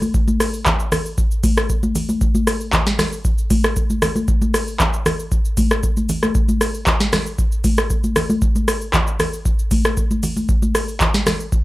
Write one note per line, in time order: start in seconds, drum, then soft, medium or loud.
0.02 high conga medium
0.02 shaker medium
0.14 kick loud
0.14 shaker medium
0.28 high conga medium
0.28 shaker medium
0.40 cross-stick medium
0.40 open hi-hat medium
0.40 shaker loud
0.54 shaker soft
0.66 kick medium
0.66 clap loud
0.66 low conga medium
0.66 shaker medium
0.80 shaker medium
0.92 cross-stick loud
0.92 open hi-hat medium
0.92 low conga medium
0.92 shaker medium
1.06 shaker soft
1.18 kick loud
1.18 shaker medium
1.31 shaker soft
1.43 kick loud
1.43 open hi-hat medium
1.43 high conga medium
1.43 shaker loud
1.57 cross-stick loud
1.57 shaker medium
1.69 kick medium
1.69 shaker medium
1.83 high conga medium
1.83 shaker soft
1.95 open hi-hat medium
1.95 low conga medium
1.95 shaker medium
2.09 high conga medium
2.09 shaker medium
2.21 kick loud
2.21 shaker medium
2.35 high conga medium
2.35 shaker medium
2.47 cross-stick medium
2.47 open hi-hat medium
2.47 shaker loud
2.61 shaker soft
2.73 kick medium
2.73 clap loud
2.73 low conga medium
2.73 shaker medium
2.87 snare medium
2.87 shaker medium
2.99 cross-stick loud
2.99 snare medium
2.99 open hi-hat medium
2.99 low conga medium
2.99 shaker medium
3.13 shaker soft
3.25 kick loud
3.25 shaker medium
3.38 shaker soft
3.50 kick loud
3.50 open hi-hat medium
3.50 high conga medium
3.50 shaker loud
3.64 cross-stick loud
3.64 shaker medium
3.76 kick medium
3.76 shaker medium
3.90 high conga medium
3.90 shaker soft
4.02 cross-stick loud
4.02 open hi-hat medium
4.02 low conga medium
4.02 shaker medium
4.16 high conga medium
4.16 shaker medium
4.28 kick loud
4.28 shaker medium
4.42 high conga medium
4.42 shaker medium
4.54 cross-stick medium
4.54 open hi-hat medium
4.54 shaker loud
4.68 shaker soft
4.80 kick medium
4.80 clap loud
4.80 low conga medium
4.80 shaker medium
4.94 shaker medium
5.06 cross-stick loud
5.06 open hi-hat medium
5.06 low conga medium
5.06 shaker medium
5.20 shaker medium
5.32 kick loud
5.32 shaker medium
5.45 shaker soft
5.57 kick loud
5.57 open hi-hat medium
5.57 high conga medium
5.57 shaker loud
5.71 cross-stick loud
5.71 shaker medium
5.83 kick medium
5.83 shaker medium
5.97 high conga medium
5.97 shaker soft
6.09 open hi-hat medium
6.09 low conga medium
6.09 shaker medium
6.23 cross-stick medium
6.23 high conga medium
6.23 shaker medium
6.35 kick loud
6.35 shaker medium
6.49 high conga medium
6.49 shaker medium
6.61 cross-stick medium
6.61 open hi-hat medium
6.61 shaker loud
6.74 shaker soft
6.87 kick medium
6.87 clap loud
6.87 low conga medium
6.87 shaker medium
7.00 snare medium
7.00 shaker medium
7.13 cross-stick loud
7.13 snare medium
7.13 open hi-hat medium
7.13 low conga medium
7.13 shaker medium
7.26 shaker medium
7.38 kick loud
7.38 shaker medium
7.52 shaker soft
7.64 kick loud
7.64 open hi-hat medium
7.64 high conga medium
7.64 shaker loud
7.78 cross-stick loud
7.78 shaker medium
7.90 kick medium
7.90 shaker medium
8.04 high conga medium
8.04 shaker medium
8.16 cross-stick loud
8.16 open hi-hat medium
8.16 low conga medium
8.16 shaker medium
8.30 high conga medium
8.30 shaker medium
8.42 kick loud
8.42 shaker medium
8.55 high conga medium
8.55 shaker medium
8.68 cross-stick loud
8.68 open hi-hat medium
8.68 shaker loud
8.81 shaker soft
8.93 kick medium
8.93 clap loud
8.93 low conga medium
8.93 shaker medium
9.07 shaker medium
9.20 cross-stick loud
9.20 open hi-hat medium
9.20 low conga medium
9.20 shaker medium
9.33 shaker medium
9.45 kick loud
9.45 shaker medium
9.59 shaker soft
9.71 kick loud
9.71 open hi-hat medium
9.71 high conga medium
9.71 shaker loud
9.85 cross-stick loud
9.85 shaker medium
9.97 kick medium
9.97 shaker medium
10.11 high conga medium
10.11 shaker soft
10.23 open hi-hat medium
10.23 low conga medium
10.23 shaker medium
10.36 high conga medium
10.36 shaker medium
10.49 kick loud
10.49 shaker medium
10.62 high conga medium
10.62 shaker medium
10.75 cross-stick medium
10.75 open hi-hat medium
10.75 shaker loud
10.88 shaker soft
11.00 kick medium
11.00 clap loud
11.00 low conga medium
11.00 shaker medium
11.14 snare medium
11.14 shaker medium
11.26 cross-stick loud
11.26 snare medium
11.26 open hi-hat medium
11.26 low conga medium
11.26 shaker medium
11.40 shaker soft
11.52 kick loud
11.52 shaker medium